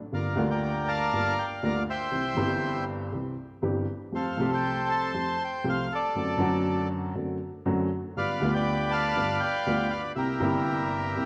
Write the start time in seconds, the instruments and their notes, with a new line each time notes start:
0.12 upright piano G1 G2 D3 G3 A#3 F4, bandoneon A#4 D5 F5
0.34 upright piano D2 D3 G3 A#3
0.39 upright piano F4
0.50 bandoneon A#4 D5 G5
0.88 bandoneon D5 F5 A5
1.13 upright piano G1 G2 D3 G3 A#3 F4
1.39 bandoneon G5
1.63 upright piano D2 D3 G3 A#3 F4, bandoneon A#5
1.90 bandoneon C5 E5 G5
2.11 upright piano C2 C3 E3 G3 C4 G4
2.35 upright piano G1 G2 E3 G3 C4
2.39 upright piano G4
3.12 upright piano C2 C3 E3 G3 C4 G4
3.62 upright piano G1 G2 E3 G3 C4 G4
4.12 upright piano F2 F3 A3 C4 G4, bandoneon A4 C5 F5
4.37 upright piano C2 C3 F3 A3 C4 G4
4.53 bandoneon C5 G5
4.89 bandoneon C5 A5
5.14 upright piano F2 F3 A3 C4 G4
5.44 bandoneon G5
5.64 upright piano C2 C3 F3 A3 C4 G4
5.69 bandoneon F5
5.92 bandoneon A4 D5
6.15 upright piano F#2 D3 F#3 A3 C4 F#4
6.37 upright piano F#2 D3 F#3 A3 C4 F#4
7.15 upright piano F#2 D3 F#3 A3 C4 F#4
7.66 upright piano F#2 D3 F#3 A3 C4 F#4
8.16 upright piano G1 G2 D3 G3 B3 F4, bandoneon B4 D5 F5
8.40 upright piano D2 D3 G3 B3
8.44 upright piano F4
8.54 bandoneon B4 D5 G5
8.91 bandoneon D5 F5 A5
9.16 upright piano G1 G2 D3 G3 B3 F4
9.40 bandoneon B4 D5 G5
9.66 upright piano D2 D3 G3 B3 F4
9.90 bandoneon F5
10.15 upright piano C2 C3 G3 A#3 E4, bandoneon G4 A#4 E5
10.39 upright piano G1 G2 C3 G3 A#3 E4
11.16 upright piano C2 C3 G3 A#3 E4